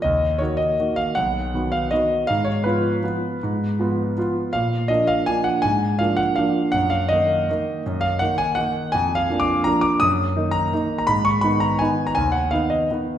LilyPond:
<<
  \new Staff \with { instrumentName = "Grand piano" } { \time 3/4 \key ees \minor \tempo 4 = 163 ees''4 des''8 ees''4 f''8 | fis''4. f''8 dis''4 | f''8 des''8 ces''2~ | ces''2. |
f''4 ees''8 f''8 aes''8 ges''8 | aes''4 f''8 ges''8 f''4 | ges''8 f''8 ees''2~ | ees''8 f''8 ges''8 aes''8 ges''4 |
\tuplet 3/2 { aes''4 f''8~ f''8 d'''4 } bes''8 d'''8 | ees'''4. bes''4~ bes''16 bes''16 | ces'''8 des'''8 ces'''8 bes''8 aes''8. bes''16 | aes''8 ges''8 f''8 ees''8 r4 | }
  \new Staff \with { instrumentName = "Grand piano" } { \time 3/4 \key ees \minor ees,4 <ees bes ges'>4 <ees bes ges'>4 | b,,4 <dis b fis'>4 <dis b fis'>4 | aes,4 <f ces' f'>4 <f ces' f'>4 | aes,4 <f ces' f'>4 <f ces' f'>4 |
bes,4 <f bes d'>4 <f bes d'>4 | aes,4 <f bes d'>4 <f bes d'>4 | ges,4 <ees bes ees'>4 <ees bes ees'>4 | ges,4 <ees bes ees'>4 <ees bes ees'>4 |
f,4 <f bes d'>4 <f bes d'>4 | ges,4 <ees bes ees'>4 <ees bes ees'>4 | aes,4 <ees ces' ees'>4 <ees ces' ees'>4 | ees,4 <ees ces' ees'>4 <ees ces' ees'>4 | }
>>